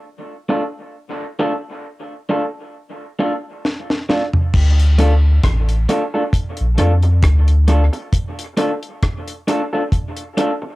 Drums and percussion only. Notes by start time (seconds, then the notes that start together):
3.65 snare
3.90 snare
4.10 snare
4.33 floor tom
4.53 kick, crash
4.80 closed hi-hat
4.99 closed hi-hat
5.43 kick, cross-stick, closed hi-hat
5.69 closed hi-hat
5.89 closed hi-hat
6.33 kick, closed hi-hat
6.57 closed hi-hat
6.78 closed hi-hat
7.03 closed hi-hat
7.23 kick, cross-stick, closed hi-hat
7.48 closed hi-hat
7.68 closed hi-hat
7.93 closed hi-hat
8.13 kick, closed hi-hat
8.39 closed hi-hat
8.57 closed hi-hat
8.83 closed hi-hat
9.03 kick, cross-stick, closed hi-hat
9.28 closed hi-hat
9.48 closed hi-hat
9.92 kick, closed hi-hat
10.17 closed hi-hat
10.38 closed hi-hat